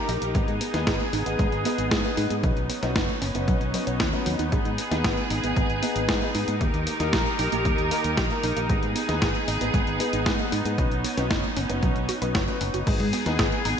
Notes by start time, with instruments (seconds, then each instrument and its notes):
Already playing: string section D#3 D#4 G4 A#4, grand piano A#3 D#4 G4 A#4
0.09 fingered electric bass A#1, synth arpeggio sound D#4, open hi-hat
0.22 fingered electric bass A#1, synth arpeggio sound A#3, closed hi-hat
0.35 fingered electric bass G#1, synth arpeggio sound G#3, grand piano B3 D#4 G#4 B4, string section B3 G#4, kick, closed hi-hat
0.48 fingered electric bass G#2, closed hi-hat
0.61 synth arpeggio sound B3, open hi-hat
0.74 fingered electric bass D#2, grand piano B3 D#4 G#4 B4, synth arpeggio sound D#4, snare, closed hi-hat
0.87 fingered electric bass G#1, synth arpeggio sound G#4, kick, snare, closed hi-hat
1.00 closed hi-hat
1.13 fingered electric bass G#1, synth arpeggio sound D#4, open hi-hat
1.26 fingered electric bass G#1, grand piano B3 D#4 G#4 B4, synth arpeggio sound B3, closed hi-hat
1.39 fingered electric bass G#1, synth arpeggio sound G#3, kick, closed hi-hat
1.52 fingered electric bass G#1, closed hi-hat
1.65 synth arpeggio sound B3, grand piano B3 D#4 G#4 B4, open hi-hat
1.78 fingered electric bass G#1, synth arpeggio sound D#4, closed hi-hat
1.91 fingered electric bass G#2, synth arpeggio sound G#4, kick, snare, closed hi-hat
2.04 grand piano B3 D#4 G#4 B4, closed hi-hat
2.17 fingered electric bass G#2, synth arpeggio sound D#4, open hi-hat
2.30 fingered electric bass G#2, synth arpeggio sound B3, closed hi-hat
2.43 fingered electric bass B1, synth arpeggio sound F#3, string section B3 C#4 D#4, grand piano C#4 D#4 F#4 B4, kick, closed hi-hat
2.57 fingered electric bass B1, closed hi-hat
2.69 synth arpeggio sound B3, open hi-hat
2.83 fingered electric bass B1, synth arpeggio sound C#4, grand piano C#4 D#4 F#4 B4, snare, closed hi-hat
2.96 fingered electric bass F#1, synth arpeggio sound D#4, kick, snare, closed hi-hat
3.09 closed hi-hat
3.22 fingered electric bass F#1, synth arpeggio sound C#4, open hi-hat
3.35 fingered electric bass F#1, synth arpeggio sound B3, grand piano C#4 D#4 F#4 B4, closed hi-hat
3.48 fingered electric bass B1, synth arpeggio sound F#3, kick, closed hi-hat
3.61 fingered electric bass B1, closed hi-hat
3.74 synth arpeggio sound F#3, grand piano C#4 D#4 F#4 B4, open hi-hat
3.87 fingered electric bass B1, synth arpeggio sound C#5, closed hi-hat
4.00 fingered electric bass D#2, synth arpeggio sound C#4, kick, snare, closed hi-hat
4.13 grand piano C#4 D#4 F#4 B4, closed hi-hat
4.26 fingered electric bass D#2, synth arpeggio sound F#3, open hi-hat
4.39 fingered electric bass D#2, synth arpeggio sound D#4, closed hi-hat
4.52 fingered electric bass G#1, synth arpeggio sound G#3, grand piano B3 D#4 G#4 B4, string section G#4, kick, closed hi-hat
4.65 fingered electric bass G#2, closed hi-hat
4.78 synth arpeggio sound B3, open hi-hat
4.91 fingered electric bass D#2, grand piano B3 D#4 G#4 B4, synth arpeggio sound D#4, snare, closed hi-hat
5.04 fingered electric bass G#1, synth arpeggio sound G#4, kick, snare, closed hi-hat
5.17 closed hi-hat
5.30 fingered electric bass G#1, synth arpeggio sound D#4, open hi-hat
5.43 fingered electric bass G#1, synth arpeggio sound B3, grand piano B3 D#4 G#4 B4, closed hi-hat
5.56 fingered electric bass G#1, synth arpeggio sound G#3, kick, closed hi-hat
5.69 fingered electric bass G#1, closed hi-hat
5.83 synth arpeggio sound B3, grand piano B3 D#4 G#4 B4, open hi-hat
5.96 fingered electric bass G#1, synth arpeggio sound D#4, closed hi-hat
6.09 fingered electric bass G#2, synth arpeggio sound G#4, kick, snare, closed hi-hat
6.22 grand piano B3 D#4 G#4 B4, closed hi-hat
6.35 fingered electric bass G#2, synth arpeggio sound D#4, open hi-hat
6.48 fingered electric bass G#2, synth arpeggio sound B3, closed hi-hat
6.61 fingered electric bass D#2, string section D#3 G4 A#4, synth arpeggio sound G3, grand piano A#3 D#4 G4 A#4, kick, closed hi-hat
6.74 fingered electric bass D#2, closed hi-hat
6.87 synth arpeggio sound A#3, open hi-hat
7.00 fingered electric bass D#2, grand piano A#3 D#4 G4 A#4, synth arpeggio sound D#4, snare, closed hi-hat
7.13 fingered electric bass A#1, synth arpeggio sound G4, kick, snare, closed hi-hat
7.26 closed hi-hat
7.39 fingered electric bass A#1, synth arpeggio sound D#4, open hi-hat
7.52 fingered electric bass A#1, grand piano A#3 D#4 G4 A#4, synth arpeggio sound A#3, closed hi-hat
7.65 fingered electric bass D#2, synth arpeggio sound G3, kick, closed hi-hat
7.78 fingered electric bass D#2, closed hi-hat
7.91 synth arpeggio sound A#3, grand piano A#3 D#4 G4 A#4, open hi-hat
8.04 fingered electric bass D#2, synth arpeggio sound D#4, closed hi-hat
8.17 fingered electric bass A#1, synth arpeggio sound G4, kick, snare, closed hi-hat
8.30 grand piano A#3 D#4 G4 A#4, closed hi-hat
8.44 fingered electric bass A#1, synth arpeggio sound D#4, open hi-hat
8.57 fingered electric bass A#1, synth arpeggio sound A#3, closed hi-hat
8.69 fingered electric bass G#1, synth arpeggio sound G#3, grand piano B3 D#4 G#4 B4, string section B3 G#4, kick, closed hi-hat
8.83 fingered electric bass G#2, closed hi-hat
8.96 synth arpeggio sound B3, open hi-hat
9.08 fingered electric bass D#2, grand piano B3 D#4 G#4 B4, synth arpeggio sound D#4, snare, closed hi-hat
9.22 fingered electric bass G#1, synth arpeggio sound G#4, kick, snare, closed hi-hat
9.35 closed hi-hat
9.48 fingered electric bass G#1, synth arpeggio sound D#4, open hi-hat
9.61 fingered electric bass G#1, grand piano B3 D#4 G#4 B4, synth arpeggio sound B3, closed hi-hat
9.74 fingered electric bass G#1, synth arpeggio sound G#3, kick, closed hi-hat
9.87 fingered electric bass G#1, closed hi-hat
10.00 grand piano B3 D#4 G#4 B4, synth arpeggio sound B3, open hi-hat
10.13 fingered electric bass G#1, synth arpeggio sound D#4, closed hi-hat
10.26 fingered electric bass G#2, synth arpeggio sound G#4, kick, snare, closed hi-hat
10.39 grand piano B3 D#4 G#4 B4, closed hi-hat
10.52 fingered electric bass G#2, synth arpeggio sound D#4, open hi-hat
10.65 fingered electric bass G#2, synth arpeggio sound B3, closed hi-hat
10.78 fingered electric bass B1, synth arpeggio sound F#3, string section C#4, grand piano C#4 D#4 F#4 B4, kick, closed hi-hat
10.91 fingered electric bass B1, closed hi-hat
11.04 synth arpeggio sound B3, open hi-hat
11.17 fingered electric bass B1, grand piano C#4 D#4 F#4 B4, synth arpeggio sound C#4, snare, closed hi-hat
11.30 fingered electric bass F#1, synth arpeggio sound D#4, kick, snare, closed hi-hat
11.44 closed hi-hat
11.57 fingered electric bass F#1, synth arpeggio sound C#4, open hi-hat
11.70 fingered electric bass F#1, synth arpeggio sound B3, grand piano C#4 D#4 F#4 B4, closed hi-hat
11.83 fingered electric bass B1, synth arpeggio sound F#3, kick, closed hi-hat
11.96 fingered electric bass B1, closed hi-hat
12.09 synth arpeggio sound F#4, open hi-hat
12.22 fingered electric bass B1, grand piano C#4 D#4 F#4 B4, synth arpeggio sound B4, closed hi-hat
12.35 fingered electric bass F#1, synth arpeggio sound F#4, kick, snare, closed hi-hat
12.48 grand piano C#4 D#4 F#4 B4, closed hi-hat
12.61 fingered electric bass F#1, synth arpeggio sound C#4, open hi-hat
12.74 fingered electric bass F#1, synth arpeggio sound F#4, closed hi-hat
12.87 fingered electric bass G#1, synth arpeggio sound G#3, string section B3 G#4, grand piano B3 D#4 G#4 B4, kick, closed hi-hat, crash
13.00 fingered electric bass G#2, closed hi-hat, high conga
13.13 synth arpeggio sound B3, open hi-hat
13.26 fingered electric bass D#2, grand piano B3 D#4 G#4 B4, synth arpeggio sound D#4, snare, closed hi-hat
13.39 fingered electric bass G#1, synth arpeggio sound G#4, kick, snare, closed hi-hat
13.52 closed hi-hat
13.65 fingered electric bass G#1, synth arpeggio sound D#4, open hi-hat